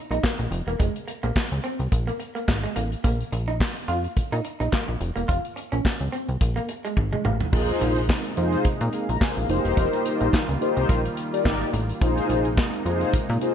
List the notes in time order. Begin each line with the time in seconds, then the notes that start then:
0.11 A#1 D#4, closed hi-hat
0.23 A#3, kick, snare, clap
0.39 A#1, muted clean electric guitar stroke, closed hi-hat
0.51 F1, closed hi-hat
0.67 E1 A#3, closed hi-hat
0.80 F1 G#3, kick, closed hi-hat
0.96 closed hi-hat
1.08 muted clean electric guitar stroke, closed hi-hat
1.23 A#1 A#3, closed hi-hat
1.36 kick, snare, clap
1.52 C#2, closed hi-hat
1.64 C4, closed hi-hat
1.79 C2, closed hi-hat
1.92 A#1, kick, closed hi-hat
2.07 A#3, closed hi-hat
2.20 muted clean electric guitar stroke, closed hi-hat
2.35 A#3, closed hi-hat
2.48 G#1, muted clean electric guitar stroke, kick, snare, clap
2.64 G#3, closed hi-hat
2.76 A1 A#3, closed hi-hat
2.92 closed hi-hat
3.04 A#1 A#3, kick, closed hi-hat
3.21 closed hi-hat
3.32 A#1, muted clean electric guitar stroke, closed hi-hat
3.48 D#4, closed hi-hat
3.60 kick, snare, clap
3.76 closed hi-hat
3.88 F2 F4, closed hi-hat
4.04 closed hi-hat
4.17 A#2, kick, closed hi-hat
4.32 A#2 D#4, closed hi-hat
4.45 muted clean electric guitar stroke, closed hi-hat
4.60 A#1 D#4, closed hi-hat
4.72 A#3, kick, snare, clap
4.88 A#1, muted clean electric guitar stroke, closed hi-hat
5.00 F1, closed hi-hat
5.16 E1 A#3, closed hi-hat
5.28 F1 F4, kick, closed hi-hat
5.45 closed hi-hat
5.56 muted clean electric guitar stroke, closed hi-hat
5.72 A#1 C#4, closed hi-hat
5.85 kick, snare, clap
6.01 C#2, closed hi-hat
6.12 C4, closed hi-hat
6.29 C2, closed hi-hat
6.41 A#1, kick, closed hi-hat
6.56 A#3, closed hi-hat
6.69 muted clean electric guitar stroke, closed hi-hat
6.85 G#3, closed hi-hat
6.97 G#1, muted clean electric guitar stroke, kick, high tom
7.13 G#3, mid tom
7.25 A1 A#3, mid tom
7.41 floor tom
7.52 A#1 C3 G#3 A#3 D#4 F4 G#4 A#4, kick, crash
7.59 C5
7.69 closed hi-hat
7.81 A#1, closed hi-hat
7.96 closed hi-hat
8.09 kick, snare, clap
8.25 closed hi-hat
8.36 F2 D#4 F4 G#4 C5, closed hi-hat
8.52 closed hi-hat
8.65 A#2, kick, closed hi-hat
8.81 A#2, closed hi-hat
8.93 G#4 F5, closed hi-hat
9.09 A#1 A#5, closed hi-hat
9.21 C5 G#5, kick, snare, clap
9.37 A#1 G#4 F5, closed hi-hat
9.49 F1 D#3 G3 D#4 F4 G4 A#4 C5, closed hi-hat
9.65 E1, closed hi-hat
9.77 F1, kick, closed hi-hat
9.93 closed hi-hat
10.05 closed hi-hat
10.21 A#1, closed hi-hat
10.33 kick, snare, clap
10.49 C#2, closed hi-hat
10.61 D#4 G4 A#4 C5, closed hi-hat
10.77 C2, closed hi-hat
10.89 A#1, kick, closed hi-hat
11.05 closed hi-hat
11.17 closed hi-hat
11.33 D#4 G4 A#4 D5, closed hi-hat
11.45 G#1, kick, snare, clap
11.61 closed hi-hat
11.73 A1, closed hi-hat
11.89 closed hi-hat
12.01 A#1 C3 G#3 A#3 D#4 F4 G#4 C5, kick, closed hi-hat
12.17 closed hi-hat
12.30 A#1, closed hi-hat
12.45 closed hi-hat
12.57 kick, snare, clap
12.73 closed hi-hat
12.85 F2 D#4 F4 G#4 C5, closed hi-hat
13.01 closed hi-hat
13.13 A#2, kick, closed hi-hat
13.29 A#2, closed hi-hat
13.41 D#4 F4 G#4 C5, closed hi-hat